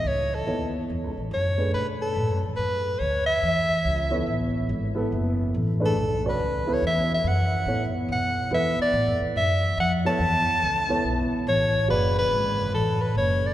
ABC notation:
X:1
M:4/4
L:1/8
Q:"Swing" 1/4=142
K:Gblyd
V:1 name="Soprano saxophone"
d =A2 z3 d2 | [K:Bdor] B A2 z B2 c e- | e4- e z3 | z3 A2 B2 c |
e e f3 z f2 | e d2 z e2 f a- | a4- a z c2 | B B3 A B c d |]
V:2 name="Upright piano"
z2 [_C_F=Ad] z4 [=A,=D_A_c]- | [K:Bdor] [A,D_A_c]2 z6 | z3 [B,EAc]3 z [B,EAB]- | [B,EAB]2 z [A,DGB] z [CFBd] z [B,EAB] |
z4 [B,EAc]3 z | [B,EAB]3 z4 [B,EAc] | z3 [B,EAc]3 z2 | [C,FBd]4- [C,FBd] z3 |]
V:3 name="Upright bass" clef=bass
D,,2 E,,2 (3_F,, D,, =A,,, G,,2 | [K:Bdor] B,,2 (3A,, F,, E,, F,,2 D,,2 | E,,2 C,,2 A,,,2 G,,,2 | F,,,2 A,,,2 B,,,2 C,,2 |
E,,2 F,,2 A,, z B,,2 | E,, z (3A,, F,, E,, F,,2 ^E,,2 | E,, z C,,2 B,,, z A,,,2 | F,,,2 G,,,2 A,,,2 F,,,2 |]